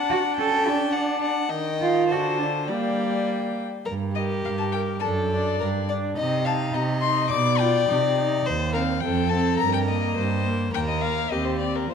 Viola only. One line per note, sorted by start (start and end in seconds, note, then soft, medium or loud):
0.00 0.40 D4 medium
0.38 0.95 C#4 medium
0.94 1.51 D4 medium
1.51 2.13 D#3 medium
2.11 2.70 D3 medium
2.68 3.66 G3 medium
4.16 4.73 A#4 medium
4.73 5.01 A#4 medium
5.03 5.30 D4 soft
5.31 5.59 D4 soft
5.60 5.88 D4 soft
5.89 6.16 D4 medium
6.17 6.44 D#4 soft
6.46 7.01 D#4 medium
7.03 7.31 D#4 medium
7.60 7.87 F4 medium
7.88 8.16 D#4 medium
8.17 8.45 D#4 medium
8.74 9.02 C4 medium
9.04 9.31 C4 medium
9.32 9.59 C4 medium
9.88 10.43 A#3 medium
10.46 10.73 A#3 medium
10.75 11.02 A#3 soft
11.04 11.31 A#3 soft
11.32 11.60 C4 soft
11.62 11.90 C4 soft